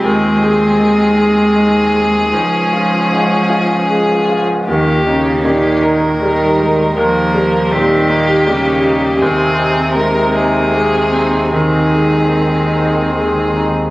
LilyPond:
<<
  \new Staff \with { instrumentName = "Violin" } { \time 3/4 \key aes \major \tempo 4 = 78 aes'2.~ | aes'2~ aes'8. r16 | g'4 g'8 bes'4. | bes'4 g'2 |
aes'4 bes'8 aes'4. | aes'2~ aes'8. r16 | }
  \new Staff \with { instrumentName = "Ambient pad" } { \time 3/4 \key aes \major << { aes'2.~ | aes'2. | g'2.~ | g'2. |
aes'2.~ | aes'2. | } \\ { <c' ees'>2. | <des' f'>2. | <bes ees'>2.~ | <bes ees'>2. |
<c' ees'>2.~ | <c' ees'>2. | } >> }
  \new Staff \with { instrumentName = "Viola" } { \time 3/4 \key aes \major c'2. | des'2~ des'8. r16 | bes2 g8 aes8 | bes4 c'8 bes8 bes4 |
c'4 aes4 bes8 c'8 | c'2~ c'8. r16 | }
  \new Staff \with { instrumentName = "Grand piano" } { \clef bass \time 3/4 \key aes \major ees,8 aes'8 ees8 aes'8 aes8 aes'8 | des,8 f'8 aes,8 f'8 aes8 f'8 | ees,8 ees'8 bes,8 ees'8 g8 ees'8 | ees,8 g8 bes,8 ees'8 g8 ees'8 |
ees,8 ees'8 ees8 ees'8 aes8 ees'8 | ees,8 aes8 ees8 ees'8 aes8 ees'8 | }
  \new Staff \with { instrumentName = "Cello" } { \clef bass \time 3/4 \key aes \major aes2. | f2~ f8. r16 | ees8 des8 ees4 ees4 | f4 ees4 des4 |
c2. | ees2~ ees8. r16 | }
  \new Staff \with { instrumentName = "Sub bass" } { \clef bass \time 3/4 \key aes \major ees,2. | des,2. | ees,2.~ | ees,2. |
ees,2.~ | ees,2. | }
>>